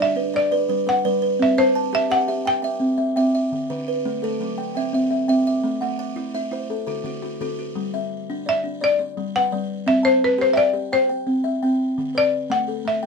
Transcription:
Already playing: D4 E5
0.00 D4 D5 E5
0.16 D4 B4
0.34 D5
0.51 B4 D5
0.69 G3 B4
0.87 B4 F#5
1.05 G3 B4 D5
1.22 B4
1.39 C4 E5
1.58 C4 C5 A5
1.75 A5
1.93 G4 E5
2.10 G4 E5 F#5
2.28 G4 E5
2.45 G5
2.62 E5 G5
2.80 C4
2.98 E5
3.16 C4 E5 G5
3.35 E5
3.52 D3
3.70 D3 B4
3.88 B4
4.05 A3
4.22 A3 A4
4.40 F#3 A3
4.58 G5
4.75 C4 E5 G5
4.93 C4 E5
5.11 E5
5.28 C4 E5 G5
5.47 E5
5.63 A3
5.81 A3 F#5
5.99 F#5
6.16 E4
6.34 E4 E5
6.51 E4 C5
6.70 A4
6.87 D3 F#4 A4
7.04 D3 F#4
7.22 F#4
7.41 D3 F#4 A4
7.59 F#4
7.75 G3
7.94 E5
8.30 D4
8.46 D5 E5
8.64 D4
8.81 D5
8.99 D5
9.17 G3
9.36 B4 F#5
9.52 G3 D5
9.86 C4 E5
10.03 C5 A5
10.24 B4
10.38 G4 C5
10.53 D5 E5 G5
10.73 G4
10.93 C5 G5
11.09 G5
11.27 C4
11.44 E5
11.63 C4 G5
11.98 D3
12.15 B4 D5
12.50 A3 F#5
12.68 A4
12.85 A3 E5
13.03 G5

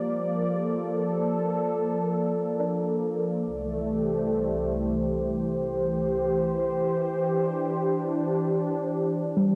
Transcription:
Already playing: F3 G3 A#3 G4 D5
0.46 A4
2.60 D4
3.45 C2
3.55 A3
3.62 E3
3.88 G4
3.98 C5
7.22 D4
9.37 G3

